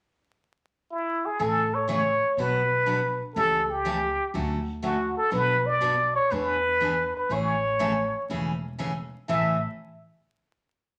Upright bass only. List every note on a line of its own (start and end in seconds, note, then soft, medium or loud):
1.40 2.18 A1 medium
2.37 3.16 B1 medium
3.36 4.14 C#2 medium
4.34 5.13 D2 medium
5.32 6.11 B1 medium
6.32 7.11 E2 medium
7.29 8.09 A1 medium
8.29 9.08 E1 medium
9.29 9.60 A1 medium